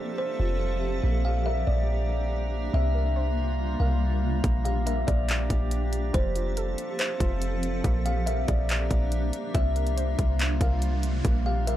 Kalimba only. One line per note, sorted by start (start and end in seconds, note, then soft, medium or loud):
0.00 0.14 C5 medium
0.18 0.99 C5 medium
1.25 1.45 F5 medium
1.46 1.66 E5 medium
1.67 2.70 D5 medium
2.74 3.76 E5 loud
3.80 4.00 F5 medium
4.65 4.85 F5 medium
4.86 5.07 E5 medium
5.07 6.10 D5 medium
6.14 6.95 C5 loud
6.99 7.80 C5 medium
8.06 8.26 F5 medium
8.26 8.47 E5 medium
8.48 9.50 D5 medium
9.55 10.57 E5 loud
10.61 10.81 F5 medium
11.46 11.66 F5 medium
11.67 11.77 E5 medium